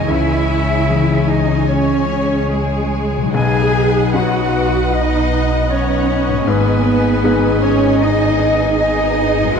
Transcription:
0.00 3.29 C#3 soft
0.00 3.33 E3 soft
0.00 3.31 G#3 medium
0.00 3.31 C#4 soft
0.00 3.30 C#5 medium
0.00 0.12 D#5 medium
0.00 3.30 G#5 medium
0.04 0.87 C#2 medium
0.04 3.35 G#4 soft
0.04 3.34 G#4 medium
0.04 1.29 E5 medium
0.09 3.34 C#2 medium
0.09 3.31 C#4 medium
0.09 1.27 E4 medium
0.09 1.29 E5 medium
0.89 3.30 E3 soft
0.89 3.30 C#4 soft
0.89 3.30 G#4 soft
1.29 1.70 D#4 medium
1.29 1.69 D#5 medium
1.29 1.70 D#5 medium
1.68 2.48 C#4 medium
1.68 2.51 C#5 medium
1.68 2.50 C#5 medium
2.49 3.34 G#3 medium
2.49 3.37 G#4 medium
2.49 3.32 G#4 medium
3.16 6.41 B2 medium
3.21 6.44 F#3 soft
3.26 6.36 D#4 soft
3.30 4.12 B1 medium
3.30 6.43 B1 medium
3.30 4.14 G#4 medium
3.30 7.20 B4 soft
3.30 4.13 G#5 medium
3.35 6.31 B3 medium
3.35 9.56 D#4 medium
3.35 6.48 B4 medium
3.35 9.55 D#5 medium
3.35 6.44 F#5 medium
3.35 3.88 G#5 medium
4.14 6.43 F#3 soft
4.14 6.43 D#4 medium
4.14 4.93 F#4 medium
4.14 6.43 B4 medium
4.14 4.92 F#5 medium
4.14 4.96 F#5 medium
4.93 5.70 D#4 medium
4.93 5.70 D#5 medium
4.93 5.72 D#5 medium
5.70 6.45 C#4 medium
5.70 6.47 C#5 medium
5.70 6.50 C#5 medium
6.28 9.52 G#2 medium
6.33 9.43 G#3 medium
6.37 9.57 D#4 soft
6.41 9.60 A#5 soft
6.47 9.55 G#1 medium
6.47 7.22 G#2 medium
6.47 7.63 B3 loud
6.47 9.60 B3 medium
6.47 9.60 G#4 medium
6.47 7.61 B4 medium
6.47 7.64 B4 medium
6.47 9.60 G#5 medium
7.24 9.55 G#3 medium
7.24 9.55 D#4 medium
7.24 9.55 B4 medium
7.62 8.00 C#4 loud
7.62 8.03 C#5 medium
7.62 8.01 C#5 medium
8.01 8.78 D#4 loud
8.01 8.77 D#5 medium
8.01 8.79 D#5 medium
8.78 9.57 D#4 medium
8.78 9.56 D#5 medium
8.78 9.57 D#5 medium
9.40 9.60 F#2 medium
9.44 9.60 G#3 medium
9.49 9.60 F#4 medium
9.53 9.60 A#4 medium

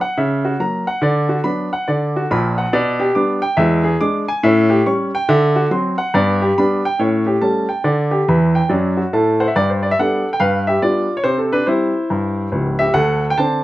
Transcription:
0.01 0.17 F#5 medium
0.18 0.54 C#3 medium
0.18 0.45 E5 medium
0.45 0.61 F#4 medium
0.60 0.83 F#3 soft
0.60 0.84 A#3 soft
0.60 0.88 A#5 medium
0.87 1.02 F#5 medium
1.02 1.38 D3 medium
1.02 1.30 D5 medium
1.29 1.46 F#4 medium
1.44 1.68 F#3 soft
1.44 1.68 B3 soft
1.44 1.68 D4 medium
1.44 1.72 B5 medium
1.73 1.89 F#5 medium
1.88 2.24 D3 medium
1.88 2.16 D5 medium
2.16 2.32 F#4 medium
2.31 2.65 A#1 medium
2.31 2.64 A#2 medium
2.31 2.58 B5 medium
2.58 2.73 F#5 medium
2.73 3.09 B2 loud
2.73 3.01 D5 medium
3.00 3.17 G4 medium
3.15 3.39 G3 soft
3.15 3.39 B3 medium
3.15 3.39 D4 medium
3.15 3.43 D6 medium
3.42 3.58 G5 medium
3.57 3.94 E2 medium
3.57 3.82 G#3 medium
3.57 3.85 E5 medium
3.84 4.01 G#4 medium
4.01 4.24 G#3 medium
4.01 4.25 D4 soft
4.01 4.28 D6 medium
4.28 4.43 G#5 medium
4.43 4.79 A2 loud
4.43 4.68 C#4 medium
4.43 4.71 E5 medium
4.70 4.87 G4 medium
4.86 5.10 G3 soft
4.86 5.10 C#4 medium
4.86 5.14 C#6 medium
5.15 5.29 G5 medium
5.29 5.65 D3 loud
5.29 5.56 E5 medium
5.56 5.72 F#4 medium
5.71 5.94 F#3 medium
5.71 5.95 C4 medium
5.71 5.99 C6 medium
5.98 6.13 F#5 medium
6.14 6.50 G2 medium
6.14 6.39 B3 medium
6.14 6.42 D5 medium
6.42 6.58 G4 medium
6.58 6.81 G3 medium
6.58 6.81 B3 medium
6.58 6.82 D4 medium
6.58 6.85 B5 medium
6.85 7.00 G5 medium
6.99 7.35 A2 medium
6.99 7.24 C#4 medium
6.99 7.27 C#5 medium
7.26 7.43 G4 medium
7.41 7.65 G3 soft
7.41 7.65 A3 medium
7.41 7.66 C#4 soft
7.41 7.69 A5 medium
7.69 7.84 G5 medium
7.84 8.20 D3 medium
7.84 8.12 D5 medium
8.11 8.28 G4 medium
8.28 8.59 E2 medium
8.28 8.59 E3 medium
8.28 8.55 B5 medium
8.55 8.70 G5 medium
8.69 9.01 F#2 medium
8.69 9.01 F#3 medium
8.69 8.97 D5 medium
8.97 9.13 F#4 medium
9.13 9.44 A2 medium
9.13 9.44 A3 medium
9.13 9.40 A5 medium
9.40 9.47 C5 medium
9.40 9.55 F#5 medium
9.48 9.55 E5 medium
9.56 9.91 G2 medium
9.56 9.68 D5 medium
9.70 9.82 C5 soft
9.83 9.90 D5 medium
9.91 9.98 E5 medium
9.99 10.22 G3 soft
9.99 10.22 B3 soft
9.99 10.23 D4 soft
9.99 10.31 A4 medium
9.99 10.28 F#5 medium
10.33 10.40 G5 medium
10.40 10.76 G2 medium
10.40 10.65 B4 medium
10.40 10.63 F5 medium
10.67 10.82 G4 medium
10.67 10.80 E5 medium
10.82 11.06 G3 soft
10.82 11.06 B3 soft
10.82 11.06 D4 soft
10.82 11.15 F4 soft
10.82 11.12 D5 medium
11.17 11.24 C#5 medium
11.24 11.61 C3 medium
11.24 11.38 C5 medium
11.38 11.52 A4 medium
11.52 11.67 D4 medium
11.52 11.65 B4 medium
11.67 11.91 G3 soft
11.67 11.91 C4 soft
11.67 12.76 E4 medium
11.67 12.62 C5 medium
12.10 12.46 G2 medium
12.52 12.86 C#1 medium
12.52 12.86 C#2 medium
12.79 12.94 G4 medium
12.79 12.92 E5 medium
12.94 13.31 D2 medium
12.94 13.28 A4 medium
12.94 13.24 F#5 medium
13.30 13.38 G5 medium
13.38 13.61 D3 soft
13.38 13.62 C4 medium
13.38 13.62 D4 soft
13.38 13.64 C5 medium
13.38 13.64 A5 medium

